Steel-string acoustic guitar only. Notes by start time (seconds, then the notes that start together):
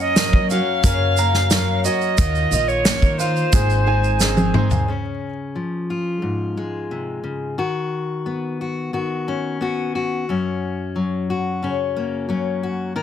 Already playing: F#2 C#4 F#4
0.17 F#3 A#3
0.51 C#4
0.83 C#3
1.18 A#3
1.52 F#3
1.85 F#4
2.19 D#3
2.53 F4
2.86 A#3 D#4
3.20 F4
3.53 G#2
3.87 D#4
4.21 D#3 C4
4.55 D#4
4.88 C#3 C#4
5.55 F3
5.90 F4
6.22 G#2
6.57 G#3
6.91 C3
7.24 C#3
7.58 D#3 F#4
8.26 B3
8.61 F#4
8.93 D#3 F#4
9.28 C#4
9.61 B3 F#4
9.95 F#4
10.29 F#2 C#4
10.96 F#3
11.30 F#4
11.63 C#3 C#4
11.96 A#3
12.29 F#3 C#4
12.63 F#4
12.96 D#3 A#4